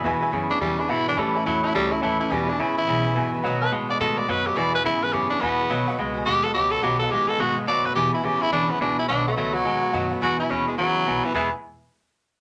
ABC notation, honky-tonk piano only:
X:1
M:4/4
L:1/8
Q:"Swing" 1/4=212
K:E
V:1 name="Honky-tonk piano"
[Beg] [Beg] [Beg] [Beg] [Beg] [Beg] [Bef] [Beg] | [cea] [cea] [cea] [cea] [cea] [cea] [cea] [cea] | [Beg] [Beg] [Beg] [Beb] [Beg] [Beg] [Beg] [Beg] | [Bdf] [Bda] [Bdf] [Bdf] [Bdf] [Bdf] [Bdf] [Bdf] |
[Beg] [Beg] e [Beg] [Beg] [Beg] [Beg] [Beg] | [Bdf] [Bdf] [Bdf] [Bdg] [Bdf] [Bdf] [Bdf] [Bda] | [Bdf] [Bdf] [Bdf] [Bdf] [Bdf] [Bdf] [Bdf] [Bf] | [Beg] [Beg] [Beg] [Beg] [Beg] [Beg] [Beg] [Beg] |
[Bdf] [Bdf] [Bdf] [Bdf] [Bdg] [Bdf] [Bdf] [Bdf] | [Beg] [Beg] [Beg] [Beg] [Bef] [Beg] [Beg] [Beg] | [Beg] z6 z |]